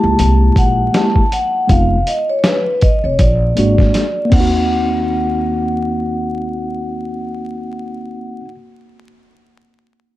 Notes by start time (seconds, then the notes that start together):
Already playing: G#3 A#3 E4 G4 A5
0.04 C#2
0.19 C2, closed hi-hat
0.56 A#1 F#5, kick, closed hi-hat
0.92 G#3 A#3 E4 G4 A5, snare, closed hi-hat
1.16 kick
1.32 F#5, closed hi-hat
1.67 F1 G#3 B3 D#4 F5, kick, closed hi-hat
1.71 F4
2.07 D#5, closed hi-hat
2.30 C#5
2.39 C#5
2.44 B4, snare, closed hi-hat
2.81 D#5, kick, closed hi-hat
3.04 F1 C#5
3.19 A#1 D5, kick, closed hi-hat
3.55 G#1 G#3 A#3 D4 F#4, closed hi-hat
3.78 kick, snare
3.94 snare, closed hi-hat
4.25 A#3
4.30 D#2 C4 F#5, kick, crash
4.35 D#4
4.40 F#4